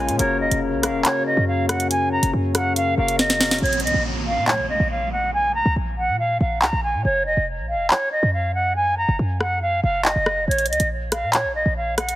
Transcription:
0.00 0.10 A#1 loud
0.00 0.18 C#3 medium
0.00 0.21 G#3 medium
0.00 0.15 A#3 medium
0.00 0.16 F4 medium
0.00 0.21 F4 medium
0.00 0.16 G#4 medium
0.00 0.20 A#4 medium
0.00 0.14 C#5 medium
0.00 3.58 C#5 medium
0.00 0.17 G#5 medium
0.09 0.19 A#2 loud
0.09 closed hi-hat medium
0.18 0.42 F#1 loud
0.18 0.65 C#3 medium
0.18 0.65 A#3 medium
0.18 3.59 A#3 medium
0.18 3.59 C#4 medium
0.18 3.59 F#4 medium
0.18 0.66 F#4 medium
0.18 0.66 A#4 loud
0.18 0.38 C#5 medium
0.18 closed hi-hat medium
0.40 0.51 F1 loud
0.40 0.59 D#5 medium
0.51 0.74 F1 loud
0.51 closed hi-hat medium
0.73 0.90 A#1 loud
0.82 1.45 C#3 medium
0.82 1.45 A#3 medium
0.82 1.45 F#4 medium
0.82 1.46 A#4 medium
0.82 1.02 F5 medium
0.82 cross-stick medium
0.82 closed hi-hat medium
0.89 1.04 F1 loud
1.05 1.24 C#5 loud
1.05 clap loud
1.05 closed hi-hat medium
1.26 1.45 D#5 medium
1.37 2.19 F#2 loud
1.48 1.67 F5 medium
1.69 1.88 F#5 medium
1.69 cross-stick loud
1.69 closed hi-hat medium
1.80 closed hi-hat medium
1.90 2.09 G#5 loud
1.90 closed hi-hat medium
2.12 2.31 A#5 medium
2.23 2.33 F#1 loud
2.23 closed hi-hat medium
2.33 2.95 F#2 loud
2.54 2.86 C#3 medium
2.54 2.86 A#3 medium
2.54 2.86 F#4 medium
2.54 2.86 A#4 medium
2.54 2.74 F#5 medium
2.54 cross-stick medium
2.54 closed hi-hat medium
2.76 2.95 F5 medium
2.76 closed hi-hat medium
2.97 3.59 F#1 loud
2.97 3.28 C#3 medium
2.97 3.29 A#3 medium
2.97 3.29 F#4 medium
2.97 3.29 A#4 medium
2.97 3.17 F5 medium
3.08 closed hi-hat medium
3.19 3.60 D#5 medium
3.19 snare medium
3.30 snare medium
3.30 closed hi-hat medium
3.39 3.56 C#3 medium
3.39 3.56 A#3 medium
3.39 3.56 F#4 medium
3.39 3.56 A#4 medium
3.39 snare loud
3.39 open hi-hat medium
3.51 snare loud
3.51 closed hi-hat soft
3.58 3.85 A#1 loud
3.58 3.81 C#5 medium
3.58 closed hi-hat medium
3.58 downlifter medium
3.66 closed hi-hat medium
3.73 closed hi-hat medium
3.80 3.94 C#2 loud
3.80 4.02 D#5 medium
3.80 closed hi-hat medium
3.87 closed hi-hat medium
3.94 4.39 A#1 loud
4.27 4.45 F5 medium
4.37 4.60 A#2 loud
4.48 4.67 C#5 loud
4.48 clap loud
4.58 4.79 A#1 loud
4.70 4.88 D#5 medium
4.80 5.62 A#1 loud
4.91 5.09 F5 medium
5.12 5.31 F#5 medium
5.34 5.52 G#5 loud
5.55 5.74 A#5 medium
5.66 5.76 C#2 loud
5.76 6.10 A#1 loud
5.98 6.17 F#5 medium
6.09 6.39 A#2 loud
6.19 6.38 F5 medium
6.41 6.64 A#1 loud
6.41 6.59 F5 medium
6.62 6.72 C#2 loud
6.62 6.81 A#5 medium
6.62 clap loud
6.73 6.96 A#1 loud
6.83 7.02 G#5 medium
6.94 7.04 A#2 loud
7.05 7.28 F#1 loud
7.05 7.24 C#5 medium
7.26 7.37 F1 loud
7.26 7.45 D#5 medium
7.37 7.60 F1 loud
7.58 7.76 A#1 loud
7.69 7.88 F5 medium
7.75 7.90 F1 loud
7.90 8.09 C#5 medium
7.90 clap loud
8.12 8.31 D#5 medium
8.23 9.05 F#2 loud
8.33 8.52 F5 medium
8.54 8.73 F#5 medium
8.76 8.95 G#5 loud
8.98 9.17 A#5 medium
9.09 9.19 F#1 loud
9.19 9.81 F#2 loud
9.41 9.59 F#5 medium
9.41 cross-stick medium
9.62 9.81 F5 medium
9.84 10.14 F#1 loud
9.84 10.02 F5 medium
10.05 10.45 D#5 medium
10.05 clap loud
10.16 10.39 F#1 loud
10.26 cross-stick loud
10.37 10.47 F1 loud
10.48 10.71 A#1 loud
10.48 10.67 C#5 medium
10.48 closed hi-hat medium
10.58 closed hi-hat medium
10.66 10.79 C#2 loud
10.66 10.88 D#5 medium
10.66 closed hi-hat medium
10.73 closed hi-hat medium
10.80 11.24 A#1 loud
10.80 closed hi-hat medium
11.12 11.31 F5 medium
11.12 cross-stick medium
11.12 closed hi-hat medium
11.23 11.46 A#2 loud
11.33 11.52 C#5 loud
11.33 clap loud
11.33 closed hi-hat medium
11.44 11.65 A#1 loud
11.55 11.74 D#5 medium
11.66 12.16 A#1 loud
11.77 11.95 F5 medium
11.98 12.16 F#5 medium
11.98 cross-stick loud
11.98 closed hi-hat medium
12.09 closed hi-hat medium

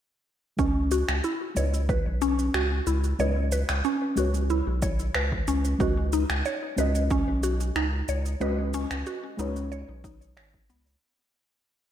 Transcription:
0.57 1.03 C#2 loud
0.57 1.52 G#3 medium
0.57 1.52 C#4 medium
0.57 0.75 C#4 loud
0.57 1.53 F#4 medium
0.57 1.53 B4 medium
0.57 kick loud
0.57 shaker soft
0.61 1.54 D#5 medium
0.91 1.01 F#4 medium
0.91 shaker medium
1.08 1.21 C#2 medium
1.08 finger snap medium
1.08 shaker soft
1.24 1.34 E4 medium
1.24 shaker soft
1.55 2.01 C#2 medium
1.55 3.15 G#3 medium
1.55 3.15 C#4 medium
1.55 3.16 F#4 medium
1.55 3.16 B4 medium
1.55 1.66 C#5 medium
1.55 shaker medium
1.59 3.17 D#5 medium
1.74 shaker soft
1.89 1.99 B4 medium
1.89 kick loud
1.89 shaker soft
2.06 2.50 B1 medium
2.22 2.38 C#4 medium
2.22 shaker medium
2.39 shaker soft
2.54 2.81 C#2 medium
2.54 2.64 F#4 medium
2.54 finger snap medium
2.54 shaker soft
2.87 3.13 C#2 loud
2.87 2.97 E4 medium
2.87 shaker medium
3.04 shaker soft
3.19 3.64 C#2 medium
3.19 3.38 G#3 loud
3.19 3.39 C#4 medium
3.19 3.39 F#4 medium
3.19 3.39 B4 medium
3.19 3.29 C#5 medium
3.19 3.39 D#5 loud
3.19 shaker soft
3.52 3.62 B4 medium
3.52 shaker medium
3.69 3.82 C#2 medium
3.69 finger snap medium
3.69 shaker soft
3.84 4.01 C#4 medium
3.84 shaker soft
4.16 4.62 C#2 medium
4.16 5.76 G#3 medium
4.16 5.76 C#4 medium
4.16 4.27 F#4 medium
4.16 5.77 F#4 medium
4.16 5.77 B4 medium
4.16 5.78 C#5 medium
4.16 shaker medium
4.34 shaker soft
4.50 4.60 E4 medium
4.50 shaker soft
4.67 5.10 B1 medium
4.82 4.92 C#5 medium
4.82 kick loud
4.82 shaker medium
4.99 shaker soft
5.15 5.42 C#2 medium
5.15 5.25 B4 medium
5.15 finger snap medium
5.15 shaker soft
5.32 kick medium
5.47 5.74 C#2 loud
5.47 5.64 C#4 medium
5.47 shaker medium
5.65 shaker soft
5.78 6.25 C#2 medium
5.78 6.74 G#3 medium
5.78 6.74 C#4 medium
5.78 5.90 F#4 medium
5.78 6.75 F#4 medium
5.78 6.75 B4 medium
5.78 kick loud
5.78 shaker soft
5.82 6.76 D#5 medium
6.13 6.23 D#4 medium
6.13 shaker medium
6.30 6.42 C#2 medium
6.30 finger snap medium
6.30 shaker soft
6.45 6.55 C#5 medium
6.45 shaker soft
6.76 7.23 C#2 medium
6.76 8.37 G#3 medium
6.76 8.37 C#4 medium
6.76 8.38 F#4 medium
6.76 6.88 B4 medium
6.76 8.38 B4 medium
6.76 8.39 D#5 medium
6.76 shaker medium
6.95 shaker soft
7.10 7.27 C#4 loud
7.10 kick loud
7.10 shaker soft
7.28 7.71 B1 medium
7.43 7.53 F#4 medium
7.43 shaker medium
7.61 shaker soft
7.76 8.02 C#2 medium
7.76 7.86 D#4 medium
7.76 finger snap medium
7.76 shaker soft
8.08 8.35 C#2 loud
8.08 8.19 C#5 medium
8.08 shaker medium
8.26 shaker soft
8.40 8.86 C#2 loud
8.40 8.60 G#3 loud
8.40 8.60 C#4 medium
8.40 8.61 F#4 medium
8.40 8.51 B4 medium
8.40 8.61 B4 medium
8.40 8.61 D#5 loud
8.40 shaker soft
8.74 8.90 C#4 loud
8.74 shaker medium
8.91 9.03 C#2 loud
8.91 finger snap medium
8.91 shaker soft
9.06 9.16 F#4 medium
9.06 shaker soft
9.37 9.83 C#2 loud
9.37 10.97 G#3 medium
9.37 10.98 C#4 medium
9.37 9.49 D#4 medium
9.37 10.98 F#4 medium
9.37 10.99 B4 medium
9.37 10.99 C#5 medium
9.37 shaker medium
9.56 shaker soft
9.72 9.82 C#5 medium
9.72 shaker soft
9.89 10.38 B1 medium
10.04 10.20 D#4 medium
10.04 kick loud
10.04 shaker medium
10.22 shaker soft
10.37 10.71 G#1 medium
10.37 10.53 C#5 medium
10.37 finger snap medium
10.37 shaker soft
10.54 kick medium
10.69 10.96 C#2 loud
10.69 10.86 B3 medium
10.69 shaker medium
10.87 shaker soft

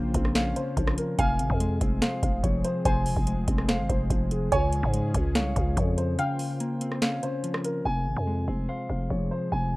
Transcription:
0.00 0.13 A#1 loud
0.00 0.55 C#3 loud
0.00 1.17 C#3 medium
0.00 0.76 A#3 medium
0.00 1.17 A#3 medium
0.00 1.17 F4 medium
0.00 1.17 C5 medium
0.00 0.73 F5 loud
0.00 0.31 G5 medium
0.14 0.54 A#1 loud
0.14 1.19 C4 medium
0.14 kick loud
0.14 closed hi-hat medium
0.25 cross-stick medium
0.35 1.19 C#4 loud
0.35 0.53 F5 medium
0.35 snare loud
0.35 closed hi-hat medium
0.56 1.18 C#3 medium
0.56 0.95 C5 medium
0.56 closed hi-hat medium
0.77 0.97 A#1 loud
0.77 1.19 F3 medium
0.77 kick loud
0.77 closed hi-hat medium
0.87 cross-stick loud
0.98 1.15 A#4 medium
0.98 closed hi-hat medium
1.19 1.41 F1 loud
1.19 2.22 C3 loud
1.19 6.15 F3 medium
1.19 6.15 G#3 medium
1.19 4.49 C4 medium
1.19 4.49 G#4 medium
1.19 1.98 F5 loud
1.19 1.98 G#5 loud
1.19 kick loud
1.19 closed hi-hat medium
1.39 1.49 G#1 loud
1.39 closed hi-hat medium
1.50 1.80 F2 loud
1.50 kick medium
1.60 2.65 G#3 medium
1.60 closed hi-hat medium
1.81 2.01 F1 loud
1.81 2.85 C4 medium
1.81 kick loud
1.81 closed hi-hat medium
2.02 3.06 C5 medium
2.02 2.20 F5 medium
2.02 snare loud
2.02 closed hi-hat medium
2.23 2.43 F1 loud
2.23 2.84 C3 medium
2.23 2.40 F5 medium
2.23 kick loud
2.23 closed hi-hat medium
2.44 2.64 F1 loud
2.44 3.48 F3 medium
2.44 2.61 C#5 medium
2.44 kick loud
2.44 closed hi-hat medium
2.64 2.82 C5 medium
2.64 closed hi-hat medium
2.85 3.08 F1 loud
2.85 3.89 C3 loud
2.85 4.48 C5 loud
2.85 3.65 G#5 loud
2.85 kick loud
2.85 closed hi-hat medium
3.06 3.16 E1 loud
3.06 open hi-hat medium
3.17 3.47 F1 loud
3.17 kick medium
3.27 4.31 G#3 medium
3.27 closed hi-hat medium
3.48 3.81 F1 loud
3.48 4.52 C4 medium
3.48 kick loud
3.48 closed hi-hat medium
3.58 cross-stick medium
3.69 4.52 C5 loud
3.69 3.86 F5 medium
3.69 snare loud
3.69 closed hi-hat medium
3.79 3.89 G#1 loud
3.89 4.09 F1 loud
3.89 4.52 C3 medium
3.89 4.29 C5 medium
3.89 kick loud
3.89 closed hi-hat medium
4.10 4.50 F1 loud
4.10 4.52 F3 medium
4.10 kick loud
4.10 closed hi-hat medium
4.31 4.49 G#4 medium
4.31 closed hi-hat medium
4.52 4.82 C#2 loud
4.52 5.55 C#3 loud
4.52 6.17 C#4 medium
4.52 6.17 G#4 medium
4.52 5.31 C#5 loud
4.52 5.31 G#5 loud
4.52 kick loud
4.52 closed hi-hat medium
4.73 closed hi-hat medium
4.83 5.13 G#2 loud
4.83 kick medium
4.94 5.98 G#3 medium
4.94 closed hi-hat medium
5.14 5.37 C#2 loud
5.14 6.19 C#4 medium
5.14 kick loud
5.14 closed hi-hat medium
5.35 5.55 C2 loud
5.35 6.19 C#5 loud
5.35 5.53 F5 medium
5.35 snare loud
5.35 closed hi-hat medium
5.56 5.76 C#2 loud
5.56 6.17 C#3 medium
5.56 5.74 F5 medium
5.56 kick loud
5.56 closed hi-hat medium
5.77 6.17 F2 loud
5.77 6.18 F3 medium
5.77 5.95 C#5 medium
5.77 kick loud
5.77 closed hi-hat medium
5.98 6.15 C5 medium
5.98 closed hi-hat medium
6.18 7.22 C#3 loud
6.18 7.84 C#3 medium
6.18 7.84 A#3 medium
6.18 7.84 F4 medium
6.18 7.84 C5 medium
6.18 7.40 F5 loud
6.18 6.98 G5 loud
6.18 closed hi-hat medium
6.39 open hi-hat medium
6.60 7.43 A#3 medium
6.60 closed hi-hat medium
6.81 7.86 C4 medium
6.81 closed hi-hat medium
6.92 cross-stick medium
7.02 7.85 C#4 medium
7.02 7.19 F5 medium
7.02 snare loud
7.02 closed hi-hat medium
7.23 7.85 C#3 medium
7.23 7.62 C5 medium
7.23 closed hi-hat medium
7.43 7.85 F3 medium
7.43 closed hi-hat medium
7.54 cross-stick loud
7.64 7.82 A#4 medium
7.64 closed hi-hat medium
7.85 8.08 F1 loud
7.85 8.88 C3 medium
7.85 9.77 F3 medium
7.85 9.77 G#3 medium
7.85 9.77 C4 medium
7.85 9.77 G#4 medium
7.85 8.65 G#5 loud
8.06 8.16 G#1 medium
8.17 8.47 F2 loud
8.27 9.31 G#3 medium
8.48 8.68 F1 loud
8.48 9.52 C4 medium
8.69 9.73 C5 medium
8.69 8.86 F5 medium
8.90 9.10 F1 loud
8.90 9.51 C3 medium
8.90 9.07 F5 medium
9.10 9.30 F1 loud
9.10 9.77 F3 medium
9.10 9.28 C#5 medium
9.31 9.49 C5 medium
9.52 9.74 F1 loud
9.52 9.77 C3 loud
9.52 9.77 G#5 medium
9.73 9.77 E1 loud

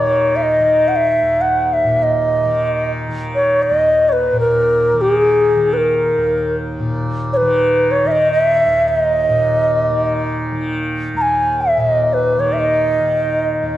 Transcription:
0.00 1.22 D#2 soft
0.00 1.84 A#2 soft
0.00 0.60 D#3 soft
0.00 0.37 C#5 medium
0.36 0.44 E5 soft
0.43 0.90 D#5 medium
0.60 2.45 D#3 soft
0.88 0.97 F#5 soft
0.96 1.43 E5 medium
1.22 3.71 D#2 soft
1.41 1.75 F#5 medium
1.73 2.04 E5 medium
1.84 4.32 A#2 soft
2.03 2.91 D#5 medium
2.45 3.09 D#3 soft
3.09 4.93 D#3 soft
3.35 3.64 C#5 medium
3.63 3.78 D5 medium
3.71 6.17 D#2 soft
3.78 4.10 D#5 medium
4.09 4.37 B4 medium
4.09 4.14 C#5 medium
4.32 6.79 A#2 soft
4.40 5.03 A#4 medium
4.93 5.56 D#3 soft
5.01 5.13 G4 medium
5.13 5.75 G#4 medium
5.56 7.42 D#3 soft
5.73 6.57 A#4 medium
5.73 5.78 B4 medium
6.18 8.66 D#2 soft
6.79 9.28 A#2 medium
7.33 7.93 B4 medium
7.33 7.38 C#5 medium
7.42 8.04 D#3 medium
7.91 8.09 C#5 medium
8.04 9.90 D#3 soft
8.04 8.13 E5 medium
8.12 8.31 D#5 medium
8.32 8.43 D#5 medium
8.43 8.88 E5 medium
8.66 11.13 D#2 medium
8.88 9.00 E5 medium
9.00 10.15 D#5 medium
9.29 11.77 A#2 soft
9.90 10.52 D#3 soft
10.52 12.38 D#3 soft
11.14 13.62 D#2 soft
11.14 11.23 A#5 medium
11.22 11.63 G#5 medium
11.61 11.82 E5 medium
11.77 13.77 A#2 soft
11.77 12.15 D#5 medium
12.13 12.41 B4 medium
12.38 13.00 D#3 medium
12.38 12.54 C#5 medium
12.53 12.61 E5 soft
12.59 13.74 D#5 medium
13.00 13.77 D#3 soft
13.62 13.77 D#2 soft

